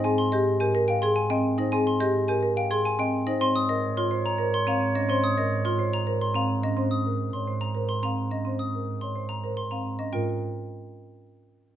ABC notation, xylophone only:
X:1
M:3/4
L:1/16
Q:1/4=107
K:Bbdor
V:1 name="Xylophone"
a c' e z a z g c' a g z e | a c' e z a z g c' a g z e | c' e' e z c' z b z c' b z e | c' e' e z c' z b z c' b z e |
z e' z2 c' z b z c' b z e | z e' z2 c' z b z c' b z e | g2 z8 z2 |]